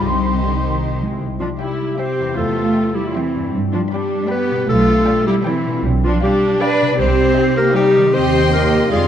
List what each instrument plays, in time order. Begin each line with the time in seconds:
0.03 double bass section C2, harp C3, cello section C3, viola section D#4, violin section G4 C5, flute section C6
0.24 harp C4
0.43 cello section D3, harp G4
0.63 cello section D#3, harp C5
0.82 harp G4
1.02 harp C3 D#4, cello section G#3
1.08 harp C4
1.13 harp E4
1.17 double bass section C2, harp G4
1.40 cello section F3, viola section D4, clarinet F4
1.59 cello section G3, viola section E4, clarinet G4, violin section E5 G5
1.98 cello section C4, viola section G4, clarinet C5, violin section E5 G5
2.20 harp E2
2.24 harp C4
2.29 harp E4
2.33 harp G4
2.38 double bass section E2, cello section A3, viola section F4, clarinet A4
2.76 violin section E5 G5 C6
2.95 cello section G3, viola section E4, clarinet G4
3.07 clarinet F4
3.14 cello section E3, viola section C4, clarinet E4, violin section E5 G5 C6
3.35 harp G2
3.40 harp B3
3.45 harp D4
3.49 harp G4
3.54 double bass section G2
3.73 cello section F3, viola section D4, clarinet F4
3.92 cello section G3, viola section D4, clarinet G4, violin section D5 G5 B5
4.30 cello section B3, viola section G4, clarinet B4, violin section D5 G5 B5
4.51 harp B2
4.56 harp D4
4.60 harp G4
4.69 double bass section B1, cello section A3, viola section F4, clarinet A4
5.07 violin section D5 G5
5.27 cello section G3, viola section E4, clarinet G4
5.46 cello section E3, viola section C4, clarinet E4, violin section D5 G5
5.67 harp B2
5.71 harp D4
5.76 harp F4
5.80 harp G4
5.85 double bass section B1
6.04 cello section F3, viola section D4, clarinet F4
6.22 cello section G3, viola section D4, clarinet G4, violin section D5 F5 G5
6.61 cello section D4, viola section B4, violin section D5 F5 G5, clarinet D5
6.81 harp C3
6.86 harp C4
6.91 harp D#4, clarinet D5
6.95 harp G4
6.99 double bass section C2, cello section C4, viola section G4, clarinet C5
7.38 violin section D#5 G5
7.57 cello section A#3, viola section G4, clarinet A#4
7.75 cello section G3, viola section D#4, clarinet G4, violin section D#5 G5
7.97 harp D#3
8.01 harp C4
8.06 harp D#4
8.10 harp G4, clarinet C5
8.14 double bass section D#2, cello section C4, viola section G4, violin section D#5 G5 C6
8.53 cello section A#3, viola section G4, clarinet A#4
8.74 harp F2
8.78 harp C4
8.83 harp D4
8.87 harp D5
8.92 double bass section F2, cello section G#3, viola section F4, clarinet G#4, violin section D5 F5 C6